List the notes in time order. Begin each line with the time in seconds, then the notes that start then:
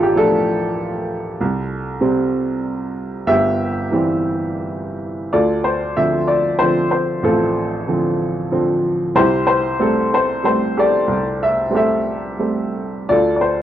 Already playing: A1 F3 A3 D4 F4 G4 A4 A#4 D5 E5 F5
0.02 G4
0.15 F3 A3 D4 F4 A4
1.40 C2
2.01 C3 G3 C4
3.27 G1 G4 E5
3.92 E3 G3 C4
5.33 D2 F4 A4 D5
5.64 C5
5.97 D3 F3 C4 E5
6.28 D5
6.59 D3 F3 C4 C5
6.91 C5
7.23 A1 C4 F4 A4
7.88 D3 F3 C4
8.52 D3 F3 C4
9.15 C2 E4 G4 C5
9.47 C5
9.80 G3 A3 C4 A4
10.14 C5
10.43 G3 A3 C4 C5
10.77 G4 A4 D5
11.07 C2
11.43 E5
11.70 G3 A3 C4
11.75 G4 A4 E5
12.39 G3 A3 C4
13.09 D2 F4 A4 D5
13.36 D5
13.41 C5